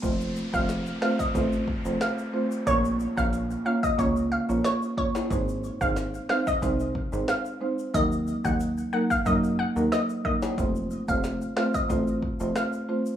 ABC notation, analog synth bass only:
X:1
M:4/4
L:1/16
Q:1/4=91
K:Fphr
V:1 name="Analog synth bass" clef=bass
F,,,3 F,,,3 z2 =A,,,3 F,,, z4 | B,,,3 B,,,3 z2 D,,3 B,,, z4 | A,,,3 A,,,3 z2 C,,3 A,,, z4 | E,,3 E,,3 z2 G,,3 E,, z4 |
F,,,3 F,,,3 z2 =A,,,3 F,,, z4 |]